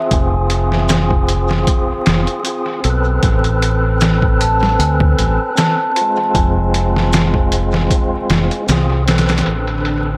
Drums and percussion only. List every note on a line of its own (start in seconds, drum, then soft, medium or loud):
0.11 kick loud
0.11 closed hi-hat medium
0.50 closed hi-hat medium
0.72 snare soft
0.89 snare loud
0.89 closed hi-hat medium
0.89 maracas medium
1.11 kick medium
1.28 closed hi-hat medium
1.51 snare soft
1.67 kick loud
1.67 closed hi-hat medium
2.06 snare loud
2.06 closed hi-hat medium
2.27 closed hi-hat soft
2.45 closed hi-hat medium
2.45 maracas medium
2.84 closed hi-hat medium
3.23 kick loud
3.23 closed hi-hat medium
3.44 closed hi-hat soft
3.62 closed hi-hat medium
4.01 snare loud
4.01 closed hi-hat medium
4.01 maracas medium
4.22 kick medium
4.41 closed hi-hat medium
4.63 snare soft
4.80 closed hi-hat medium
5.00 kick medium
5.18 closed hi-hat medium
5.57 snare loud
5.57 closed hi-hat medium
5.57 maracas medium
5.96 closed hi-hat medium
6.35 kick loud
6.35 closed hi-hat medium
6.74 closed hi-hat medium
6.96 snare soft
7.13 snare loud
7.13 closed hi-hat medium
7.13 maracas medium
7.34 kick medium
7.52 closed hi-hat medium
7.74 snare medium
7.90 kick loud
7.90 closed hi-hat medium
8.30 snare loud
8.30 closed hi-hat medium
8.51 closed hi-hat soft
8.69 snare loud
8.69 closed hi-hat medium
8.69 maracas medium
9.08 snare medium
9.08 closed hi-hat medium
9.18 snare medium
9.18 closed hi-hat medium
9.29 snare medium
9.29 closed hi-hat medium
9.38 snare medium
9.38 closed hi-hat medium
9.46 closed hi-hat medium
9.67 closed hi-hat soft
9.85 closed hi-hat medium